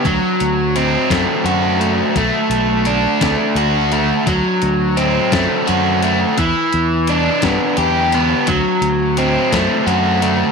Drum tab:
HH |xxxxxx|xxxxxx|xxxxxx|xxxxxx|
SD |---o--|---o--|---o--|---o--|
BD |o--o--|o--o--|o--o--|o--o--|

HH |xxxxxx|
SD |---o--|
BD |o--o--|